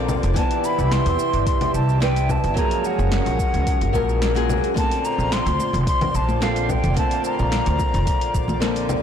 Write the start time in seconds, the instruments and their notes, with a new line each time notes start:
Already playing: upright bass A#1, analog synth pad A#2 F4 C5 D5, nylon-string guitar D3 A#3 C4 A4
0.09 low conga, shaker
0.23 upright bass F1, open hi-hat, shaker
0.34 analog synth pad C3 G4 E5, nylon-string guitar E3 C4 D4, flute A5, kick, open hi-hat, shaker
0.38 nylon-string guitar B3
0.51 open hi-hat
0.64 flute B5, shaker
0.79 upright bass C2, shaker
0.92 flute C6, snare, open hi-hat, shaker
1.06 upright bass E2, open hi-hat
1.19 shaker
1.33 upright bass G1, open hi-hat, shaker
1.47 flute C6, kick, open hi-hat, shaker
1.61 open hi-hat, low conga
1.74 upright bass C2, flute A5, shaker
1.89 shaker
2.00 nylon-string guitar E3 C4 D4 B4, flute G5, snare, open hi-hat, shaker
2.16 open hi-hat, shaker
2.29 flute A5, kick, low conga, shaker
2.44 upright bass G1, open hi-hat, shaker
2.54 nylon-string guitar F3 F#3 A#3, analog synth pad G#3 C#4 G#4 A#4, kick, open hi-hat, shaker
2.58 nylon-string guitar G#4, flute A#5
2.71 open hi-hat
2.84 flute F#5, shaker
2.99 upright bass F#1, shaker
3.12 snare, open hi-hat, shaker
3.26 upright bass A#1, open hi-hat
3.39 kick, shaker
3.54 upright bass C#2, open hi-hat, shaker
3.67 kick, open hi-hat, shaker
3.81 upright bass F#1, open hi-hat
3.93 upright bass A#1, nylon-string guitar F3 F#3 A#3 A#4, kick, shaker
4.09 shaker
4.22 snare, open hi-hat, shaker
4.35 nylon-string guitar F#3 A#3 F4 G#4, open hi-hat, shaker
4.50 low conga, shaker
4.64 open hi-hat, shaker
4.74 analog synth pad A#2 F4 C5 D5, nylon-string guitar D3 A#3 C4, kick, open hi-hat, high conga, shaker
4.78 nylon-string guitar A4, flute A5
4.92 open hi-hat
5.05 flute A#5, shaker
5.18 upright bass A#1, shaker
5.32 flute C6, snare, open hi-hat, shaker
5.46 upright bass D2, open hi-hat
5.59 high conga, shaker
5.73 upright bass F1, open hi-hat, low conga, shaker
5.87 flute C6, kick, open hi-hat, shaker
6.01 open hi-hat, low conga
6.14 upright bass A#1, flute A5, shaker
6.29 high conga, shaker
6.41 nylon-string guitar D3 A#3 C4 A4, flute F5, snare, open hi-hat, shaker
6.56 open hi-hat, shaker
6.69 flute G5, kick, low conga, shaker
6.84 upright bass F1, open hi-hat, low conga, shaker
6.94 nylon-string guitar D3 A#3 C4, flute A5, kick, open hi-hat, high conga, shaker
6.99 nylon-string guitar A3
7.11 open hi-hat
7.24 flute A#5, shaker
7.39 upright bass A#1, shaker
7.52 snare, open hi-hat, shaker
7.66 upright bass D2, open hi-hat
7.79 kick, high conga, shaker
7.94 upright bass F1, open hi-hat, low conga, shaker
8.07 kick, open hi-hat, shaker
8.21 open hi-hat
8.35 upright bass A#1, kick, shaker
8.48 high conga, low conga, shaker
8.60 nylon-string guitar D3 A#3 C4 A4, snare, open hi-hat, shaker
8.76 open hi-hat, shaker
8.89 low conga, shaker